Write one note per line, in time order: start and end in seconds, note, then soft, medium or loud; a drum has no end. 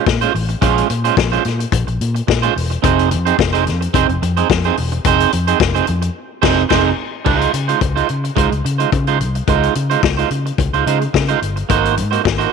0.06 0.26 A#2 loud
0.06 muted clean electric guitar stroke soft
0.06 kick loud
0.06 snare medium
0.21 0.33 G#3 medium
0.21 0.33 C#4 medium
0.21 0.34 F4 medium
0.21 0.34 C5 medium
0.21 closed hi-hat soft
0.34 0.54 A1 medium
0.34 muted clean electric guitar stroke soft
0.34 open hi-hat medium
0.49 muted clean electric guitar stroke soft
0.49 closed hi-hat soft
0.61 0.81 A#1 loud
0.61 0.87 G#3 medium
0.61 0.87 C#4 medium
0.61 0.88 F4 medium
0.61 0.88 C5 medium
0.61 kick loud
0.61 closed hi-hat medium
0.78 closed hi-hat soft
0.90 1.09 A#2 medium
0.90 closed hi-hat medium
1.04 1.16 G#3 medium
1.04 1.15 C#4 medium
1.04 1.15 F4 medium
1.04 1.15 C5 medium
1.04 closed hi-hat soft
1.17 1.36 A#1 loud
1.17 kick loud
1.17 snare loud
1.32 1.44 G#3 medium
1.32 1.44 C#4 medium
1.32 1.45 F4 medium
1.32 1.45 C5 medium
1.32 closed hi-hat soft
1.45 1.64 A#2 medium
1.45 snare soft
1.45 closed hi-hat medium
1.59 muted clean electric guitar stroke soft
1.59 closed hi-hat medium
1.72 1.83 A#1 loud
1.72 muted clean electric guitar stroke soft
1.72 kick loud
1.72 closed hi-hat medium
1.87 1.97 A#1 medium
1.87 muted clean electric guitar stroke soft
1.87 closed hi-hat soft
2.01 2.20 A#2 loud
2.01 closed hi-hat medium
2.15 muted clean electric guitar stroke soft
2.15 closed hi-hat soft
2.27 2.47 A#2 loud
2.27 muted clean electric guitar stroke soft
2.27 kick loud
2.27 snare medium
2.42 2.54 G#3 medium
2.42 2.55 C#4 medium
2.42 2.55 F4 medium
2.42 2.55 C5 medium
2.42 closed hi-hat soft
2.56 2.75 E1 medium
2.56 muted clean electric guitar stroke soft
2.56 open hi-hat medium
2.70 muted clean electric guitar stroke soft
2.70 closed hi-hat soft
2.82 3.13 F1 loud
2.82 3.09 C4 medium
2.82 3.09 D#4 medium
2.82 3.09 G#4 medium
2.82 3.10 C5 medium
2.82 kick loud
2.82 closed hi-hat medium
2.99 closed hi-hat soft
3.11 3.31 F2 medium
3.11 muted clean electric guitar stroke soft
3.11 closed hi-hat medium
3.25 3.37 C4 medium
3.25 3.37 D#4 medium
3.25 3.37 G#4 medium
3.25 3.36 C5 medium
3.25 closed hi-hat medium
3.38 3.68 F1 loud
3.38 muted clean electric guitar stroke medium
3.38 kick loud
3.38 snare loud
3.53 3.65 C4 medium
3.53 3.65 D#4 medium
3.53 3.65 G#4 medium
3.53 3.66 C5 medium
3.53 closed hi-hat soft
3.66 3.86 F2 medium
3.66 muted clean electric guitar stroke soft
3.66 snare soft
3.66 closed hi-hat medium
3.81 muted clean electric guitar stroke medium
3.81 closed hi-hat medium
3.94 4.04 F1 loud
3.94 4.09 C4 medium
3.94 4.09 D#4 medium
3.94 4.08 G#4 medium
3.94 4.08 C5 loud
3.94 kick loud
3.94 closed hi-hat medium
4.09 4.18 F1 medium
4.09 muted clean electric guitar stroke soft
4.09 closed hi-hat soft
4.22 4.41 F2 loud
4.22 muted clean electric guitar stroke soft
4.22 closed hi-hat medium
4.37 4.48 C4 medium
4.37 4.48 D#4 medium
4.37 4.48 G#4 medium
4.37 4.47 C5 medium
4.37 closed hi-hat soft
4.50 4.69 F2 medium
4.50 muted clean electric guitar stroke soft
4.50 kick medium
4.50 snare loud
4.64 4.76 C4 medium
4.64 4.77 D#4 medium
4.64 4.77 G#4 medium
4.64 4.78 C5 medium
4.64 closed hi-hat soft
4.77 4.97 E1 medium
4.77 muted clean electric guitar stroke soft
4.77 open hi-hat medium
4.92 muted clean electric guitar stroke soft
4.92 closed hi-hat soft
5.05 5.24 F1 loud
5.05 5.31 C4 medium
5.05 5.31 D#4 medium
5.05 5.31 G#4 medium
5.05 5.32 C5 loud
5.05 kick loud
5.05 closed hi-hat medium
5.20 closed hi-hat medium
5.32 5.52 F2 medium
5.32 muted clean electric guitar stroke soft
5.32 closed hi-hat medium
5.47 5.59 C4 medium
5.47 5.58 D#4 medium
5.47 5.58 G#4 medium
5.47 5.58 C5 medium
5.47 closed hi-hat medium
5.60 5.80 F1 loud
5.60 kick loud
5.60 snare loud
5.75 5.86 C4 medium
5.75 5.87 D#4 medium
5.75 5.87 G#4 medium
5.75 5.88 C5 medium
5.75 closed hi-hat soft
5.87 6.08 F2 loud
5.87 muted clean electric guitar stroke soft
5.87 closed hi-hat medium
6.02 muted clean electric guitar stroke medium
6.02 closed hi-hat soft
6.42 6.62 F1 loud
6.42 6.63 C4 medium
6.42 6.62 D#4 loud
6.42 6.62 G#4 medium
6.42 6.62 C5 loud
6.42 kick loud
6.42 snare loud
6.42 crash medium
6.69 6.90 F1 loud
6.69 6.90 C4 medium
6.69 6.90 D#4 medium
6.69 6.90 G#4 medium
6.69 6.89 C5 medium
6.69 kick medium
6.69 snare medium
6.69 crash medium
7.25 7.45 C#2 loud
7.25 7.36 G3 medium
7.25 7.36 D4 medium
7.25 7.37 E4 medium
7.25 7.38 B4 medium
7.25 kick loud
7.25 crash medium
7.36 7.51 G#3 medium
7.36 7.51 D#4 medium
7.36 7.52 F4 medium
7.36 7.52 C5 medium
7.41 closed hi-hat soft
7.54 7.73 C#3 medium
7.54 closed hi-hat medium
7.68 7.80 G#3 soft
7.68 7.80 D#4 medium
7.68 7.80 F4 medium
7.68 7.79 C5 medium
7.68 closed hi-hat soft
7.81 8.01 C#2 medium
7.81 muted clean electric guitar stroke soft
7.81 kick loud
7.81 closed hi-hat medium
7.96 8.08 G#3 medium
7.96 8.09 D#4 medium
7.96 8.09 F4 medium
7.96 8.10 C5 medium
7.96 closed hi-hat soft
8.09 8.29 C#3 medium
8.09 muted clean electric guitar stroke soft
8.09 closed hi-hat soft
8.24 muted clean electric guitar stroke soft
8.24 closed hi-hat soft
8.36 8.47 C#2 medium
8.36 8.52 G#3 medium
8.36 8.52 D#4 medium
8.36 8.51 F4 medium
8.36 8.50 C5 medium
8.36 kick loud
8.36 closed hi-hat medium
8.52 8.61 C#2 medium
8.52 muted clean electric guitar stroke soft
8.52 closed hi-hat soft
8.65 8.84 C#3 medium
8.65 muted clean electric guitar stroke soft
8.65 closed hi-hat medium
8.78 8.91 G#3 soft
8.78 8.90 D#4 medium
8.78 8.90 F4 medium
8.78 8.90 C5 medium
8.78 closed hi-hat soft
8.92 9.21 C#3 medium
8.92 kick loud
8.92 closed hi-hat medium
9.07 9.19 G#3 medium
9.07 9.19 D#4 medium
9.07 9.19 F4 medium
9.07 9.20 C5 medium
9.07 closed hi-hat soft
9.20 9.39 C2 medium
9.20 closed hi-hat medium
9.35 muted clean electric guitar stroke soft
9.35 closed hi-hat soft
9.48 9.67 C#2 loud
9.48 9.74 G#3 medium
9.48 9.74 D#4 medium
9.48 9.74 F4 medium
9.48 9.74 C5 medium
9.48 kick medium
9.48 closed hi-hat medium
9.63 closed hi-hat soft
9.75 9.95 C#3 medium
9.75 muted clean electric guitar stroke soft
9.75 closed hi-hat medium
9.90 10.02 G#3 medium
9.90 10.01 D#4 medium
9.90 10.01 F4 medium
9.90 10.01 C5 medium
9.90 closed hi-hat soft
10.03 10.22 C#2 medium
10.03 muted clean electric guitar stroke soft
10.03 kick loud
10.03 snare loud
10.17 10.30 G#3 medium
10.17 10.30 D#4 medium
10.17 10.31 F4 medium
10.17 10.31 C5 medium
10.17 closed hi-hat soft
10.30 10.50 C#3 medium
10.30 muted clean electric guitar stroke soft
10.30 closed hi-hat medium
10.46 muted clean electric guitar stroke soft
10.46 closed hi-hat soft
10.58 10.69 C#2 medium
10.58 muted clean electric guitar stroke soft
10.58 kick loud
10.58 closed hi-hat medium
10.73 10.82 C#2 medium
10.73 10.85 G#3 medium
10.73 10.85 D#4 medium
10.73 10.85 F4 medium
10.73 10.84 C5 medium
10.73 closed hi-hat soft
10.86 11.06 C#3 loud
10.86 11.02 G#3 medium
10.86 11.01 D#4 medium
10.86 11.00 F4 medium
10.86 10.99 C5 medium
10.86 closed hi-hat medium
11.01 muted clean electric guitar stroke soft
11.01 closed hi-hat soft
11.13 11.34 C#3 medium
11.13 muted clean electric guitar stroke soft
11.13 kick medium
11.13 snare medium
11.28 11.40 G#3 medium
11.28 11.41 D#4 medium
11.28 11.41 F4 medium
11.28 11.41 C5 medium
11.28 closed hi-hat soft
11.41 11.61 G1 medium
11.41 muted clean electric guitar stroke soft
11.41 closed hi-hat medium
11.56 muted clean electric guitar stroke soft
11.56 closed hi-hat soft
11.69 11.99 G#1 medium
11.69 11.95 A#3 medium
11.69 11.95 D#4 medium
11.69 11.96 F#4 medium
11.69 11.96 C5 medium
11.69 kick loud
11.69 closed hi-hat medium
11.85 closed hi-hat soft
11.97 12.17 G#2 medium
11.97 closed hi-hat medium
12.11 12.22 A#3 soft
12.11 12.23 D#4 medium
12.11 12.23 F#4 medium
12.11 12.22 C5 medium
12.11 closed hi-hat soft
12.23 12.45 G#1 medium
12.23 muted clean electric guitar stroke soft
12.23 kick loud
12.23 snare loud
12.38 12.51 A#3 medium
12.38 12.51 D#4 medium
12.38 12.52 F#4 medium
12.38 12.52 C5 medium
12.38 closed hi-hat soft